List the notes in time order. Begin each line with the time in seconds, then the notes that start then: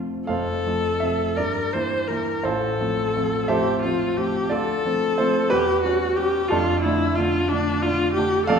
Already playing: F2 C3 F3 A3 C4 C5 F5 A5
0.27 F1 F2 A4 C5 F5
0.67 F3 A3 C4
1.00 F3 A3 C4 E5
1.37 G2 A#4 D5
1.73 E3 A#3 E4 C5
2.08 E3 A#3 E4 A#4
2.44 A1 A2 F4 A4 C5
2.80 F3 A3 C4
3.16 F3 A3 C4
3.48 F3 A3 C4 G4 A4 C5 E5
3.83 F3 A3 C4 F4
4.17 F3 A3 C4 G4
4.49 D2 F4 A4 D5
4.85 F3 A3 C4
5.18 F3 A3 C4 C5
5.50 E2 G4 B4
5.83 G3 C#4 F#4
6.16 G3 C#4 G4
6.49 F1 F2 D4 F4 A4
6.83 D3 A3 D4 E4
7.15 D3 A3 D4 F4
7.49 D3 A3 D4
7.82 D3 A3 D4 F4
8.14 D3 A3 D4 G4
8.46 F1 F2 A4 D5 F5